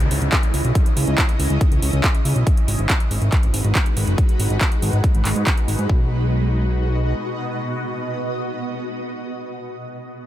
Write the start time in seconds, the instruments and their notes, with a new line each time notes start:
Already playing: ambient pad C#3 C#4 E4 D#5, downlifter
0.00 analog synth bass C#2, closed hi-hat
0.11 analog synth bass C#2, open hi-hat
0.22 analog synth bass C#2, closed hi-hat
0.32 kick, clap, closed hi-hat
0.43 closed hi-hat
0.54 analog synth bass C#2, open hi-hat
0.65 analog synth bass B1, closed hi-hat
0.75 kick, closed hi-hat
0.86 closed hi-hat
0.97 analog synth bass C#2, open hi-hat
1.07 analog synth bass C#2
1.18 kick, clap, closed hi-hat
1.29 closed hi-hat
1.40 analog synth bass C#2, open hi-hat
1.50 analog synth bass C#2, closed hi-hat
1.61 kick, closed hi-hat
1.72 analog synth bass C#2, closed hi-hat
1.82 analog synth bass C#2, open hi-hat
1.93 analog synth bass C#2, closed hi-hat
2.04 kick, clap, closed hi-hat
2.15 closed hi-hat
2.25 analog synth bass C#2, open hi-hat
2.36 analog synth bass B1, closed hi-hat
2.47 ambient pad G#3 D#4 F#4 B4, kick, closed hi-hat
2.57 closed hi-hat
2.68 analog synth bass G#1, open hi-hat
2.79 analog synth bass G#1, closed hi-hat
2.90 kick, clap, closed hi-hat
3.00 closed hi-hat
3.11 analog synth bass G#1, open hi-hat
3.22 analog synth bass G#1, closed hi-hat
3.32 kick, clap, closed hi-hat
3.43 analog synth bass G#1, closed hi-hat
3.54 analog synth bass G#1, open hi-hat
3.65 analog synth bass G#1, closed hi-hat
3.75 kick, clap, closed hi-hat
3.86 closed hi-hat
3.97 analog synth bass G#1, open hi-hat
4.07 analog synth bass F#1, closed hi-hat
4.18 kick, closed hi-hat
4.29 closed hi-hat
4.39 analog synth bass G#1, open hi-hat
4.50 analog synth bass G#1, closed hi-hat
4.61 kick, clap, closed hi-hat
4.72 closed hi-hat
4.82 analog synth bass G#1, open hi-hat
4.93 analog synth bass G#1, closed hi-hat
5.04 kick, closed hi-hat
5.15 analog synth bass G#1, closed hi-hat
5.25 analog synth bass G#1, clap, open hi-hat
5.36 analog synth bass G#2, closed hi-hat
5.47 kick, clap, closed hi-hat
5.57 closed hi-hat
5.68 analog synth bass G#1, open hi-hat
5.79 analog synth bass G#2, closed hi-hat
5.89 analog synth bass B1, ambient pad B2 B3 F#4 D#5, kick